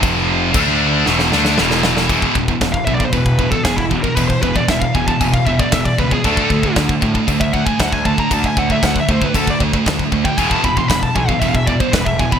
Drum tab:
CC |x---x-----------|x---x---x---x---|x---x---x---x---|x---x---x---x---|
SD |--------oooooooo|----o-------o---|----o-------o---|----o-------o---|
BD |o---o-----------|oooooooooooooooo|oooooooooooooooo|oooooooooooooooo|

CC |x---x---x---x---|x---x---x---x---|
SD |----o-------o---|----o-------o---|
BD |oooooooooooooooo|oooooooooooooooo|